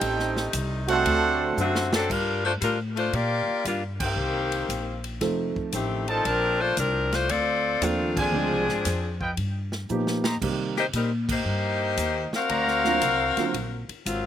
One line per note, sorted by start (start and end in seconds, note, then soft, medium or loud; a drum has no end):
0.00 0.52 A1 medium
0.00 2.07 C3 medium
0.00 1.02 G3 medium
0.00 2.08 A3 medium
0.00 0.54 C4 medium
0.00 0.54 D#4 medium
0.00 1.05 D#4 medium
0.00 0.53 G4 medium
0.00 0.55 A4 medium
0.00 0.54 C5 medium
0.00 0.55 G5 loud
0.00 kick soft
0.00 ride medium
0.19 snare soft
0.37 snare medium
0.53 1.04 C2 loud
0.53 kick soft
0.53 hi-hat pedal medium
0.53 ride medium
0.87 1.88 A3 loud
0.87 1.88 C4 loud
0.87 1.89 D4 loud
0.87 1.88 F#4 loud
0.87 1.89 A4 loud
0.87 1.88 C5 loud
0.87 1.88 F#5 loud
0.87 ride medium
1.05 1.56 D2 medium
1.05 2.08 F#3 medium
1.05 2.08 D4 medium
1.05 kick soft
1.05 ride medium
1.57 2.08 F#2 loud
1.57 1.91 D3 medium
1.57 1.91 A3 medium
1.57 1.91 C4 medium
1.57 1.91 F#4 medium
1.57 hi-hat pedal medium
1.75 snare medium
1.93 2.10 F#3 medium
1.93 2.10 C4 medium
1.93 2.10 D4 medium
1.93 2.10 A4 loud
1.93 snare loud
2.09 2.60 G2 medium
2.09 2.45 G3 medium
2.09 2.44 D4 medium
2.09 2.44 F4 medium
2.09 2.45 A#4 medium
2.09 kick medium
2.09 crash medium
2.45 2.53 A3 medium
2.45 2.52 D4 medium
2.45 2.53 F4 medium
2.45 2.52 C5 medium
2.61 3.12 A2 medium
2.61 2.77 G3 medium
2.61 2.77 D4 medium
2.61 2.77 F4 medium
2.61 2.77 A#4 medium
2.61 kick soft
2.61 hi-hat pedal medium
2.61 ride medium
2.96 3.12 A3 medium
2.96 3.12 D4 medium
2.96 3.12 F4 medium
2.96 3.12 C5 loud
2.96 ride soft
3.13 3.46 A#2 medium
3.13 3.65 A#3 medium
3.13 3.65 F4 loud
3.13 3.65 G4 medium
3.13 3.66 D5 loud
3.13 kick soft
3.13 ride medium
3.47 muted upright bass stroke soft
3.65 4.15 G2 medium
3.65 3.82 G3 medium
3.65 3.82 A#3 medium
3.65 3.82 D4 medium
3.65 3.82 F4 medium
3.65 kick soft
3.65 hi-hat pedal medium
3.65 ride medium
4.00 5.02 D#3 medium
4.00 5.02 A#3 medium
4.00 5.01 C4 medium
4.00 4.66 D#4 medium
4.00 5.01 G4 medium
4.00 4.66 A#4 medium
4.00 4.66 C5 medium
4.00 4.66 G5 medium
4.00 kick medium
4.00 crash medium
4.16 4.67 C2 medium
4.52 ride medium
4.69 5.19 A#1 medium
4.69 kick soft
4.69 hi-hat pedal medium
4.69 ride medium
5.04 ride soft
5.21 5.53 F1 medium
5.21 6.01 F3 medium
5.21 6.01 A3 medium
5.21 6.01 C4 medium
5.21 6.01 D#4 soft
5.21 6.01 A4 medium
5.21 kick soft
5.21 snare soft
5.21 ride medium
5.56 muted upright bass stroke soft
5.56 kick medium
5.72 6.23 A1 medium
5.72 6.06 D#3 medium
5.72 6.06 A3 medium
5.72 6.06 C4 medium
5.72 6.06 G4 medium
5.72 kick soft
5.72 hi-hat pedal medium
5.72 ride medium
6.08 6.25 F3 medium
6.08 6.25 C4 medium
6.08 6.74 D4 loud
6.08 6.25 D#4 medium
6.08 6.25 A4 medium
6.08 6.74 A#4 medium
6.08 6.74 C5 loud
6.08 6.74 A5 loud
6.08 ride soft
6.25 6.75 A#1 medium
6.25 6.61 F3 medium
6.25 6.61 C4 medium
6.25 6.59 D4 medium
6.25 6.60 A#4 loud
6.25 kick soft
6.25 ride medium
6.60 6.77 A3 medium
6.60 6.76 D4 medium
6.60 6.77 F4 medium
6.60 6.77 C5 loud
6.77 7.27 C2 medium
6.77 7.10 F3 medium
6.77 7.10 C4 medium
6.77 7.10 D4 medium
6.77 7.10 A#4 medium
6.77 kick soft
6.77 hi-hat pedal medium
6.77 ride medium
7.12 7.29 A3 medium
7.12 7.29 D4 medium
7.12 7.29 F4 medium
7.12 7.30 C5 loud
7.12 snare medium
7.12 ride soft
7.29 7.80 D2 medium
7.29 7.81 C4 loud
7.29 7.82 F4 loud
7.29 7.81 A4 medium
7.29 7.81 D5 loud
7.29 kick soft
7.29 ride medium
7.81 8.31 D#2 medium
7.81 8.32 F3 medium
7.81 8.17 A3 medium
7.81 8.33 A#3 soft
7.81 8.16 C4 medium
7.81 8.33 C4 soft
7.81 8.33 D4 soft
7.81 8.17 D4 medium
7.81 8.17 F4 medium
7.81 8.34 A4 medium
7.81 kick soft
7.81 hi-hat pedal medium
7.81 ride medium
8.16 9.21 F3 medium
8.16 9.21 C4 medium
8.16 9.21 D4 medium
8.16 8.82 F4 loud
8.16 9.21 G#4 medium
8.16 8.82 C5 medium
8.16 8.82 D5 medium
8.16 8.82 G#5 loud
8.16 kick medium
8.16 crash medium
8.32 8.50 D2 medium
8.32 8.65 F3 medium
8.32 8.65 G#3 medium
8.32 8.65 C4 soft
8.32 8.65 D4 soft
8.32 8.65 G#4 medium
8.50 8.68 C2 medium
8.69 8.84 G#1 medium
8.69 snare soft
8.85 9.36 F2 medium
8.85 kick soft
8.85 snare soft
8.85 hi-hat pedal medium
8.85 ride medium
9.20 9.32 F4 medium
9.20 9.32 B4 medium
9.20 9.32 D#5 medium
9.20 9.32 G5 medium
9.20 kick medium
9.37 9.88 G2 medium
9.37 kick soft
9.37 ride medium
9.72 snare medium
9.89 10.40 A#2 medium
9.89 10.21 F3 medium
9.89 10.21 A#3 soft
9.89 10.21 B3 soft
9.89 10.21 D#4 soft
9.89 10.22 G4 medium
9.89 hi-hat pedal medium
10.07 snare medium
10.24 10.36 G4 medium
10.24 10.35 C5 medium
10.24 10.36 D#5 medium
10.24 10.35 A#5 medium
10.24 snare medium
10.41 10.92 C3 medium
10.41 10.73 D#3 medium
10.41 10.73 G3 medium
10.41 10.73 A#3 medium
10.41 10.73 C4 medium
10.41 10.73 G4 medium
10.41 kick medium
10.41 crash medium
10.76 10.85 A#3 medium
10.76 10.85 D#4 medium
10.76 10.85 G4 medium
10.76 10.85 C5 medium
10.76 snare soft
10.93 11.44 A#2 medium
10.93 11.11 G3 medium
10.93 11.10 C4 medium
10.93 11.11 D#4 medium
10.93 11.11 A#4 medium
10.93 kick soft
10.93 hi-hat pedal medium
10.93 ride medium
11.29 12.30 A#3 medium
11.29 12.30 D#4 medium
11.29 12.30 G4 medium
11.29 12.30 C5 medium
11.29 kick medium
11.29 crash medium
11.45 11.96 G2 medium
11.97 12.30 D#2 medium
11.97 kick soft
11.97 hi-hat pedal medium
11.97 ride medium
12.32 13.90 F5 loud
12.32 muted upright bass stroke soft
12.32 snare medium
12.36 13.90 C4 loud
12.36 13.90 F#4 loud
12.36 13.90 A#4 medium
12.49 13.00 D2 medium
12.49 13.29 F#4 medium
12.49 13.29 C5 medium
12.49 13.29 D5 medium
12.49 13.29 A#5 loud
12.49 kick soft
12.49 ride medium
12.68 snare soft
12.84 13.00 D3 medium
12.84 13.00 F#3 medium
12.84 13.00 A#3 medium
12.84 13.00 C4 medium
12.84 13.00 F4 medium
12.84 snare soft
13.02 13.34 C2 medium
13.02 kick soft
13.02 hi-hat pedal medium
13.02 ride medium
13.37 13.52 D3 medium
13.37 13.52 F#3 medium
13.37 13.52 A#3 medium
13.37 13.53 C4 medium
13.37 13.53 F4 medium
13.37 muted upright bass stroke soft
13.37 snare soft
13.37 ride medium
13.54 13.86 A#1 medium
13.54 kick soft
13.54 ride medium
13.89 muted upright bass stroke soft
13.89 ride soft
14.06 14.26 G#1 medium
14.06 14.26 F#3 medium
14.06 14.26 A#3 medium
14.06 14.26 C4 medium
14.06 14.26 F4 medium
14.06 kick soft
14.06 hi-hat pedal medium
14.06 ride medium